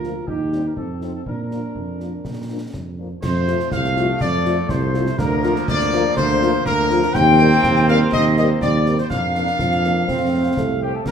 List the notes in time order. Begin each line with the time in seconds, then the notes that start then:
Already playing: D2 F4 A#4
0.04 F3 A#3 F4, snare
0.28 D#2 D#4 G4, concert bass drum
0.52 G3 C4 D#4, snare
0.66 A#4
0.77 F2 C4 A4, concert bass drum
1.01 F3 C4 D#4, snare
1.15 A4
1.26 A#2 D4 A#4, concert bass drum
1.51 F3 A#3 D4, snare
1.75 F2, concert bass drum
2.00 F3 A#3 D4, snare
2.25 A#2, concert bass drum, snare
2.49 F3 A#3 D4
2.73 F2, concert bass drum, snare
2.99 F3 A#3 D4
3.22 F2 F3 A3 C5, concert bass drum, snare, crash
3.47 F3 A3 F4, snare
3.60 snare
3.71 C2 F5, concert bass drum, snare
3.84 snare
3.96 F3 A3 F4, snare
4.21 F2 D5, concert bass drum, snare
4.45 F3 A3 F4, snare
4.69 C2 C5, concert bass drum, snare
4.94 F3 A3 F4, snare
5.06 snare
5.18 D2 F3 A#3 A#4, concert bass drum, snare, crash
5.43 F3 A#3 F4, snare
5.56 snare
5.67 D2 D5, concert bass drum, snare
5.80 snare
5.92 F3 A#3 F4, snare
6.16 D2 C5, concert bass drum, snare
6.41 F3 A#3 F4, snare
6.65 D2 A#4, concert bass drum, snare
6.90 F3 A#3 F4, snare
7.02 snare
7.14 D#2 A#3 C4 G5, concert bass drum, snare, crash
7.39 G3 C4 A#4, snare
7.51 snare
7.63 D#2, concert bass drum, snare
7.76 snare
7.88 G3 C4 A#4 F5, snare
8.12 D#2 D#5, concert bass drum, snare
8.37 G3 C4 A#4 D#5, snare
8.61 D#2 D5, concert bass drum, snare
8.86 G3 C4 A#4, snare
8.98 C5, snare
9.10 F2 A#3 D4 F5, concert bass drum, snare, crash
9.35 A#3 D4 A#4, snare
9.47 snare
9.59 F2 F3, concert bass drum, snare
9.72 snare
9.84 A#3 D4 A#4, snare
10.08 F2 A3 C4, concert bass drum, snare
10.32 A3 C4 C5
10.57 C2 A3, concert bass drum, snare
10.81 A3 C4 G4 C5 G5
10.94 A4 A5
11.06 A#1 F3 D4 A#4 A#5, concert bass drum, snare, crash